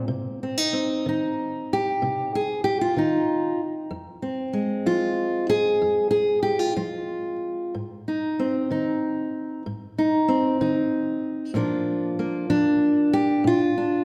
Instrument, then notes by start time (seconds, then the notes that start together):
steel-string acoustic guitar
Already playing: C4
0.08 C3
0.43 C4
0.58 D#4
0.73 C4
1.06 D#3 D#4
1.73 G4
2.02 C3
2.35 G#4
2.64 G4
2.81 F4
2.97 D#3 D#4
3.91 F2
4.22 C4
4.53 G#3
4.86 F3 F4
5.50 G#4
5.82 F2
6.11 G#4
6.43 G4
6.59 F4
6.77 F3 F4
7.74 G#2
8.08 D#4
8.39 C4
8.71 D#3 D#4
9.66 G#2
9.98 D#4
10.28 C4
10.61 D#3 D#4
11.54 A#2 F3 A#3 D4 F4
12.19 A#3
12.50 F3 D4
13.13 G4
13.44 A#2 F4
13.78 D4